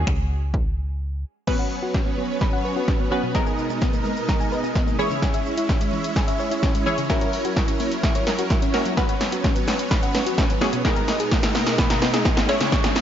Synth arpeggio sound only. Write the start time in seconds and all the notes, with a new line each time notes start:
1.48 B5
1.59 F#5
1.83 F#4
1.94 C#4
2.06 B3
2.18 F#3
2.41 B5
2.53 F#5
2.65 B4
2.76 F#4
2.88 C#4
3.00 B3
3.12 F#3
3.23 B2
3.35 A#5
3.47 G#5
3.70 D#4
3.82 B3
3.94 A#3
4.05 G#3
4.29 A#5
4.40 G#5
4.52 B4
4.64 D#4
4.75 B3
4.87 A#3
4.99 E3
5.11 C#3
5.22 G#5
5.34 E5
5.58 E4
5.69 C#4
5.81 G#3
5.93 E3
6.16 G#5
6.28 E5
6.40 C#5
6.51 E4
6.63 C#4
6.75 G#3
6.86 E3
6.98 C#3
7.10 E5
7.21 C#5
7.45 F#4
7.57 E4
7.68 C#4
7.80 A#3
8.04 E5
8.15 C#5
8.27 A#4
8.39 F#4
8.50 E4
8.62 C#4
8.74 A#3
8.86 F#3
8.97 B5
9.09 F#5
9.33 F#4
9.44 C#4
9.56 B3
9.68 F#3
9.91 B5
10.03 F#5
10.15 B4
10.26 F#4
10.38 C#4
10.50 B3
10.62 F#3
10.73 B2
10.85 B5
10.96 A#5
11.20 G#4
11.32 D#4
11.43 B3
11.55 A#3
11.79 B5
11.90 A#5
12.02 B4
12.14 G#4
12.26 D#4
12.37 B3
12.49 G#3
12.61 C#3
12.72 C#6
12.84 G#5